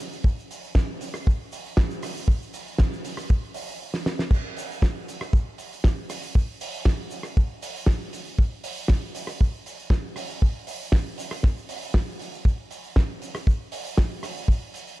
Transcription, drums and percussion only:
0.00 shaker
0.13 shaker
0.24 kick, shaker
0.39 shaker
0.51 open hi-hat, shaker
0.64 shaker
0.75 kick, snare, shaker
1.01 open hi-hat, shaker
1.14 cross-stick, shaker
1.27 kick, shaker
1.52 open hi-hat, shaker
1.65 shaker
1.77 kick, snare, shaker
1.90 shaker
2.02 cross-stick, open hi-hat, shaker
2.17 shaker
2.28 kick, shaker
2.42 shaker
2.54 open hi-hat, shaker
2.67 shaker
2.78 kick, snare, shaker
2.93 shaker
3.05 open hi-hat, shaker
3.17 cross-stick, shaker
3.30 kick, shaker
3.54 open hi-hat, shaker
3.69 shaker
3.94 snare
4.06 snare
4.19 snare
4.31 kick, crash, shaker
4.57 open hi-hat, shaker
4.71 shaker
4.82 kick, snare, shaker
5.08 open hi-hat, shaker
5.21 cross-stick, shaker
5.33 kick, shaker
5.58 open hi-hat, shaker
5.73 shaker
5.84 kick, snare, shaker
6.10 cross-stick, open hi-hat, shaker
6.23 shaker
6.35 kick, shaker
6.61 open hi-hat, shaker
6.74 shaker
6.85 kick, snare, shaker
7.11 open hi-hat, shaker
7.23 cross-stick, shaker
7.37 kick, shaker
7.62 open hi-hat, shaker
7.76 shaker
7.86 kick, snare, shaker
8.13 open hi-hat, shaker
8.26 shaker
8.39 kick, shaker
8.64 open hi-hat, shaker
8.77 shaker
8.88 kick, snare, shaker
9.15 open hi-hat, shaker
9.27 cross-stick, shaker
9.41 kick, shaker
9.66 open hi-hat, shaker
9.79 shaker
9.90 kick, snare, shaker
10.16 cross-stick, open hi-hat, shaker
10.30 shaker
10.42 kick, shaker
10.67 open hi-hat, shaker
10.82 shaker
10.92 kick, snare, shaker
11.18 open hi-hat, shaker
11.31 cross-stick, shaker
11.43 kick, snare, shaker
11.58 shaker
11.69 open hi-hat, shaker
11.82 shaker
11.94 kick, snare, shaker
12.19 open hi-hat, shaker
12.34 shaker
12.45 kick, shaker
12.71 open hi-hat, shaker
12.84 shaker
12.96 kick, snare, shaker
13.22 open hi-hat, shaker
13.35 cross-stick, shaker
13.47 kick, shaker
13.72 open hi-hat, shaker
13.86 shaker
13.97 kick, snare, shaker
14.23 cross-stick, open hi-hat, shaker
14.37 shaker
14.48 kick, shaker
14.74 open hi-hat, shaker
14.87 shaker

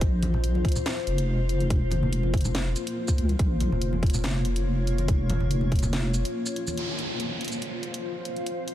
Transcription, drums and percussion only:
0.01 kick, closed hi-hat
0.23 closed hi-hat, high conga
0.34 low conga
0.44 closed hi-hat
0.55 high conga
0.65 kick, closed hi-hat, high conga
0.68 closed hi-hat
0.72 closed hi-hat, low conga
0.76 shaker
0.86 snare, closed hi-hat
1.07 closed hi-hat
1.18 closed hi-hat
1.49 closed hi-hat
1.60 closed hi-hat, high conga
1.70 kick, closed hi-hat
1.91 closed hi-hat, high conga, low conga
2.03 low conga
2.13 closed hi-hat
2.23 high conga
2.33 kick, closed hi-hat, high conga
2.37 closed hi-hat
2.41 closed hi-hat
2.45 low conga, shaker
2.55 snare, closed hi-hat
2.76 closed hi-hat, shaker
2.87 closed hi-hat
3.08 kick, shaker
3.18 closed hi-hat
3.29 closed hi-hat, high conga
3.39 kick, closed hi-hat
3.60 closed hi-hat, high conga
3.72 low conga
3.82 closed hi-hat
3.93 high conga
4.03 kick, closed hi-hat, high conga
4.06 closed hi-hat
4.10 closed hi-hat
4.14 low conga, shaker
4.24 snare, closed hi-hat
4.45 closed hi-hat
4.56 closed hi-hat
4.87 closed hi-hat
4.98 closed hi-hat, high conga
5.08 kick, closed hi-hat
5.30 closed hi-hat, high conga, low conga
5.40 low conga
5.51 closed hi-hat
5.61 high conga
5.72 kick, closed hi-hat, high conga
5.75 closed hi-hat
5.79 closed hi-hat, low conga
5.83 shaker
5.93 snare, closed hi-hat
6.14 closed hi-hat, shaker
6.25 closed hi-hat
6.46 shaker
6.56 closed hi-hat
6.67 closed hi-hat, high conga, shaker
6.77 closed hi-hat
6.99 closed hi-hat
7.20 closed hi-hat
7.41 closed hi-hat
7.45 closed hi-hat
7.48 closed hi-hat
7.52 shaker
7.62 closed hi-hat
7.83 closed hi-hat
7.94 closed hi-hat
8.25 closed hi-hat
8.36 closed hi-hat
8.46 closed hi-hat
8.68 closed hi-hat

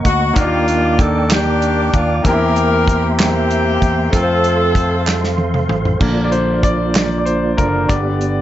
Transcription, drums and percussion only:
0.05 kick, closed hi-hat
0.36 kick, closed hi-hat
0.68 closed hi-hat
0.99 kick, closed hi-hat
1.31 snare, clap, closed hi-hat
1.62 closed hi-hat
1.93 kick, closed hi-hat
2.25 kick, closed hi-hat
2.56 closed hi-hat
2.88 kick, closed hi-hat
3.19 snare, clap, closed hi-hat
3.50 closed hi-hat
3.82 kick, closed hi-hat
4.13 kick, closed hi-hat
4.44 closed hi-hat
4.75 kick, closed hi-hat
5.07 snare, clap
5.24 snare
5.38 high tom
5.54 mid tom
5.69 mid tom
5.85 floor tom
6.01 kick, crash
6.32 closed hi-hat
6.63 kick, closed hi-hat
6.95 snare, clap, closed hi-hat
7.26 closed hi-hat
7.58 kick, closed hi-hat
7.89 kick, closed hi-hat
8.21 closed hi-hat

